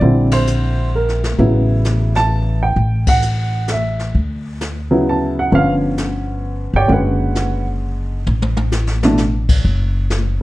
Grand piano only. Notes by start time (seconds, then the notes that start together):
Already playing: D5
0.02 D3 G3 C4 E4
0.33 C5
0.95 A#4
1.38 C#3 F#3 B3 E4
2.16 A5
2.63 G5
3.09 F#5
3.72 E5
4.91 C#3 F#3 B3 E4
5.09 A5
5.39 F#5
5.52 D3 F3 B3 C#4 F5
6.76 G4 C#5 D5 G5
6.88 D3 G#3 C#4 F#4
6.92 F#4 B4 C#5 F#5
9.03 B2 E3 A3 D4